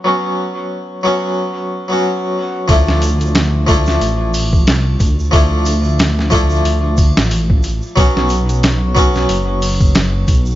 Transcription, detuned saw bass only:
2.69 D2
4.01 A1
4.67 C2
5.00 D2
5.33 D2
6.65 D2
7.17 A1
7.64 A1
7.97 B1
9.29 F#1
9.95 F#1
10.28 B1

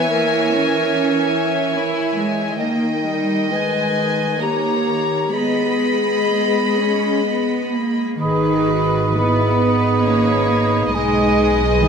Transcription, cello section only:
0.09 A#3
0.51 C#4
0.92 C#4
1.75 E4
2.17 G#3
2.60 A#3
3.05 G3
3.52 G#3
4.41 A#3
5.33 B3
6.30 B3
6.78 C#4
7.26 B3
7.73 A#3
8.21 D#3
9.17 B3
10.05 A#3
10.94 G#3
11.80 D#3

